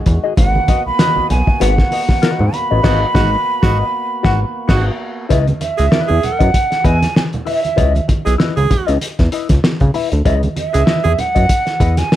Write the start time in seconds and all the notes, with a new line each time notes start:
Already playing: D#3 G#3 F#4
0.06 E2, muted hollow-body jazz guitar stroke, kick, closed hi-hat
0.24 F#4 G#4 D#5
0.37 G#1 A#3 B3 F#4 F#5, kick, closed hi-hat, low conga
0.55 high conga
0.68 F#4 B4 D#5, kick, closed hi-hat, high conga
0.86 B1 B5
0.99 F#4 B4 D#5, snare, closed hi-hat, muted conga, high conga
1.16 B1, high conga
1.30 B1 G#5, muted hollow-body jazz guitar stroke, closed hi-hat, muted conga, low conga
1.47 muted hollow-body jazz guitar stroke, kick
1.60 G#1 F#4 B4 F#5, closed hi-hat, muted conga
1.78 muted hollow-body jazz guitar stroke, kick, snare
1.91 F#4 B4 D#5, open hi-hat, muted conga
2.08 muted hollow-body jazz guitar stroke, kick, snare, high conga
2.22 F#4 B4 D#5, snare, closed hi-hat
2.39 G#2, low conga
2.53 B5, muted hollow-body jazz guitar stroke, closed hi-hat, muted conga
2.71 A1 F#4 B4 D#5
2.83 G#1 F#4 B4 D#5, kick, snare, crash
3.14 G#1 F#4 B4 D#5, kick, snare
3.62 G#1 F#4 B4 D#5, kick, snare
4.23 G#1 F#4 B4 F#5, kick, snare
4.68 G#1 F#4 B4 D#5, kick, snare, crash
5.29 C#2 E4 B4 D#5 E5, kick, closed hi-hat, muted conga, low conga
5.47 closed hi-hat, high conga
5.61 E5, muted hollow-body jazz guitar stroke, closed hi-hat, muted conga, high conga
5.77 C#2 E4 G#4 B4 D#5, closed hi-hat
5.91 E4 B4 D#5, snare, high conga
6.08 E2 G#4, high conga
6.23 F#5, muted hollow-body jazz guitar stroke, closed hi-hat, low conga
6.39 F#2 E4 B4 D#5, kick, closed hi-hat
6.54 kick, closed hi-hat
6.71 muted hollow-body jazz guitar stroke, snare, closed hi-hat
6.84 E2 E4 B4 D#5 G#5, kick, closed hi-hat
7.01 muted hollow-body jazz guitar stroke, snare, closed hi-hat, high conga
7.15 G#5, muted hollow-body jazz guitar stroke, snare, muted conga
7.32 muted hollow-body jazz guitar stroke, closed hi-hat, low conga
7.45 E4 B4 E5, open hi-hat, muted conga
7.63 muted hollow-body jazz guitar stroke, closed hi-hat, high conga
7.76 C#2 E4 B4 D#5, kick, closed hi-hat, muted conga, low conga
7.95 closed hi-hat, high conga
8.08 muted hollow-body jazz guitar stroke, kick, closed hi-hat, muted conga, high conga
8.25 B1 E4 G#4 B4 D#5, closed hi-hat
8.38 E4 B4 D#5, snare, high conga
8.56 C#2 G#4, closed hi-hat, high conga
8.70 muted hollow-body jazz guitar stroke, kick, closed hi-hat, low conga
8.87 C#2 E4 B4 D#5, closed hi-hat
9.01 closed hi-hat, muted conga
9.19 E2, muted hollow-body jazz guitar stroke, kick, snare, closed hi-hat
9.32 E4 B4 D#5, closed hi-hat
9.49 C#2, kick, snare, closed hi-hat, high conga
9.64 muted hollow-body jazz guitar stroke, snare
9.80 C#3, muted hollow-body jazz guitar stroke, kick, closed hi-hat, low conga
9.94 E4 B4 E5, open hi-hat, muted conga
10.12 D2, muted hollow-body jazz guitar stroke, closed hi-hat, high conga
10.25 C#2 E4 B4 D#5 E5, kick, closed hi-hat, low conga
10.43 closed hi-hat, high conga
10.56 E5, muted hollow-body jazz guitar stroke, closed hi-hat, muted conga, high conga
10.73 C#2 E4 G#4 B4 D#5, closed hi-hat
10.86 E4 B4 D#5, snare, muted conga, high conga
11.04 E2 G#4, closed hi-hat, high conga
11.17 F#5, muted hollow-body jazz guitar stroke, closed hi-hat, muted conga, low conga
11.35 F#2 E4 B4 D#5, kick, closed hi-hat
11.49 kick, closed hi-hat
11.66 muted hollow-body jazz guitar stroke, snare, closed hi-hat
11.80 E2 E4 B4 D#5, kick, closed hi-hat
11.97 G#5, muted hollow-body jazz guitar stroke, snare, closed hi-hat, high conga
12.12 muted hollow-body jazz guitar stroke, snare